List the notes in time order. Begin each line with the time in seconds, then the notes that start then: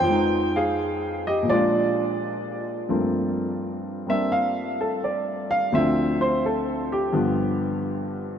Already playing: C5 G5
0.00 F2
0.04 F3 G#3
0.11 D#4
0.56 G#4 F5
1.27 G4 D#5
1.43 A#2 F3
1.50 G#3 F4 D5
1.54 D4
2.89 G2 F3 A3 A#3 C4
4.07 G3 A#3 C4 D4 E5
4.32 F5
4.81 A4
5.04 D5
5.51 F5
5.72 D2 D3 F3 C4 E5
6.21 C5
6.46 A4
6.92 G4
7.12 G2 D3 F3 B3